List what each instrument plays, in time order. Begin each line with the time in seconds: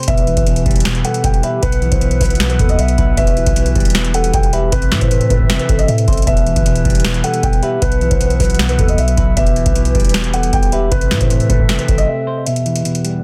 0.03 closed hi-hat
0.08 808-style bass E1, clean electric guitar B2, woodwind section E3 E4 G4 B4, soft synth lead B4, grand piano E5, kick, closed hi-hat
0.17 closed hi-hat
0.27 clean electric guitar E3, closed hi-hat
0.37 808-style bass E1, kick, closed hi-hat
0.47 clean electric guitar B2, closed hi-hat
0.56 closed hi-hat
0.66 808-style bass E1, clean electric guitar G3, kick, closed hi-hat
0.71 closed hi-hat
0.76 closed hi-hat
0.80 closed hi-hat
0.85 clean electric guitar B2, snare, closed hi-hat
0.95 closed hi-hat
1.05 clean electric guitar B3, soft synth lead A4, grand piano F#5, closed hi-hat
1.14 closed hi-hat
1.24 808-style bass E1, grand piano G5, kick, closed hi-hat
1.34 closed hi-hat
1.43 soft synth lead G4, clean electric guitar B4, grand piano E5, closed hi-hat
1.62 808-style bass B1, clean electric guitar B2, woodwind section B3 E5 F#5, grand piano B4, soft synth lead B4, kick, closed hi-hat
1.72 closed hi-hat
1.82 clean electric guitar E3, closed hi-hat
1.92 808-style bass B1, grand piano C5, kick, closed hi-hat
2.01 clean electric guitar B2, closed hi-hat
2.11 closed hi-hat
2.21 808-style bass B1, clean electric guitar F#3, grand piano B4, kick, closed hi-hat, open hi-hat
2.26 closed hi-hat
2.30 closed hi-hat
2.35 closed hi-hat
2.40 clean electric guitar B2, snare, closed hi-hat
2.50 808-style bass C2, grand piano B4, closed hi-hat
2.59 808-style bass D#2, clean electric guitar B3, soft synth lead A4, kick, closed hi-hat
2.69 grand piano D#5, closed hi-hat
2.79 808-style bass B1, grand piano E5, closed hi-hat
2.88 closed hi-hat
2.98 808-style bass B1, clean electric guitar B4, kick, closed hi-hat
3.17 808-style bass E1, clean electric guitar B2, woodwind section E3 E4 G4, soft synth lead B4, grand piano E5, kick, closed hi-hat
3.27 closed hi-hat
3.37 clean electric guitar E3, closed hi-hat
3.46 808-style bass B1, kick, closed hi-hat
3.56 clean electric guitar B2, closed hi-hat
3.66 closed hi-hat
3.75 808-style bass E1, clean electric guitar G3, kick, closed hi-hat
3.80 closed hi-hat
3.85 closed hi-hat
3.90 closed hi-hat
3.95 clean electric guitar B2, snare, closed hi-hat
4.05 closed hi-hat
4.14 clean electric guitar B3, soft synth lead A4, grand piano F#5, closed hi-hat
4.24 closed hi-hat
4.34 808-style bass E1, grand piano G5, kick, closed hi-hat
4.43 closed hi-hat
4.53 soft synth lead G4, clean electric guitar B4, grand piano E5, closed hi-hat
4.72 808-style bass A1, clean electric guitar C3, woodwind section A3 C4 A4 E5, grand piano B4, soft synth lead B4, kick, closed hi-hat
4.82 closed hi-hat
4.91 808-style bass A2, clean electric guitar E3, snare, closed hi-hat
5.01 808-style bass A2, grand piano C5, kick, closed hi-hat
5.11 clean electric guitar C3, closed hi-hat
5.21 closed hi-hat
5.30 808-style bass A2, clean electric guitar A3, grand piano B4, kick, closed hi-hat
5.40 kick
5.49 clean electric guitar C3, snare, closed hi-hat
5.59 grand piano B4, closed hi-hat
5.69 808-style bass A1, clean electric guitar C4, soft synth lead A4, kick, closed hi-hat
5.79 grand piano D#5, closed hi-hat
5.88 808-style bass A2, grand piano E5, closed hi-hat
5.98 closed hi-hat
6.08 808-style bass A1, clean electric guitar C5, kick, closed hi-hat
6.13 closed hi-hat
6.17 closed hi-hat
6.22 closed hi-hat
6.27 808-style bass E1, clean electric guitar B2, woodwind section E3 E4 G4 B4, soft synth lead B4, grand piano E5, kick, closed hi-hat
6.37 closed hi-hat
6.46 clean electric guitar E3, closed hi-hat
6.56 808-style bass E1, kick, closed hi-hat
6.66 clean electric guitar B2, closed hi-hat
6.76 closed hi-hat
6.85 808-style bass E1, clean electric guitar G3, kick, closed hi-hat
6.90 closed hi-hat
6.95 closed hi-hat
7.00 closed hi-hat
7.05 clean electric guitar B2, snare, closed hi-hat
7.14 closed hi-hat
7.24 clean electric guitar B3, soft synth lead A4, grand piano F#5, closed hi-hat
7.34 closed hi-hat
7.43 808-style bass E1, grand piano G5, kick, closed hi-hat
7.53 closed hi-hat
7.63 soft synth lead G4, clean electric guitar B4, grand piano E5, closed hi-hat
7.82 808-style bass B1, clean electric guitar B2, woodwind section B3 B4 E5 F#5, grand piano B4, soft synth lead B4, kick, closed hi-hat
7.92 closed hi-hat
8.01 clean electric guitar E3, closed hi-hat
8.11 808-style bass B1, grand piano C5, kick, closed hi-hat
8.20 clean electric guitar B2, closed hi-hat
8.30 closed hi-hat
8.40 808-style bass B1, clean electric guitar F#3, grand piano B4, kick, closed hi-hat, open hi-hat
8.45 closed hi-hat
8.50 closed hi-hat
8.55 closed hi-hat
8.59 clean electric guitar B2, snare, closed hi-hat
8.69 808-style bass C2, grand piano B4, closed hi-hat
8.79 808-style bass D#2, clean electric guitar B3, soft synth lead A4, kick, closed hi-hat
8.88 grand piano D#5, closed hi-hat
8.98 808-style bass B1, grand piano E5, closed hi-hat
9.08 closed hi-hat
9.17 808-style bass B1, clean electric guitar B4, kick, closed hi-hat
9.37 808-style bass E1, clean electric guitar B2, woodwind section E3 E4 G4, soft synth lead B4, grand piano E5, kick, closed hi-hat
9.46 closed hi-hat
9.56 clean electric guitar E3, closed hi-hat
9.66 808-style bass B1, kick, closed hi-hat
9.76 clean electric guitar B2, closed hi-hat
9.85 closed hi-hat
9.95 808-style bass E1, clean electric guitar G3, kick, closed hi-hat
10.00 closed hi-hat
10.05 closed hi-hat
10.09 closed hi-hat
10.14 clean electric guitar B2, snare, closed hi-hat
10.24 closed hi-hat
10.33 clean electric guitar B3, soft synth lead A4, grand piano F#5, closed hi-hat
10.43 closed hi-hat
10.53 808-style bass E1, grand piano G5, kick, closed hi-hat
10.63 closed hi-hat
10.72 soft synth lead G4, clean electric guitar B4, grand piano E5, closed hi-hat
10.91 808-style bass A1, clean electric guitar C3, woodwind section A3 C4 A4 E5, grand piano B4, soft synth lead B4, kick, closed hi-hat
11.01 closed hi-hat
11.11 808-style bass A2, clean electric guitar E3, snare, closed hi-hat
11.21 808-style bass A2, grand piano C5, kick, closed hi-hat
11.30 clean electric guitar C3, closed hi-hat
11.40 closed hi-hat
11.49 808-style bass A2, clean electric guitar A3, grand piano B4, kick, closed hi-hat
11.59 kick
11.69 clean electric guitar C3, snare, closed hi-hat
11.79 grand piano B4, closed hi-hat
11.88 808-style bass A1, clean electric guitar C4, soft synth lead A4, kick, closed hi-hat
11.98 grand piano D#5, closed hi-hat
12.08 grand piano E5
12.27 clean electric guitar C5
12.46 woodwind section E2 E3 G4 B4, clean electric guitar B2, grand piano E5, closed hi-hat
12.56 closed hi-hat
12.66 clean electric guitar E3, closed hi-hat
12.76 closed hi-hat
12.85 clean electric guitar B2, closed hi-hat
12.95 closed hi-hat
13.05 clean electric guitar G3, closed hi-hat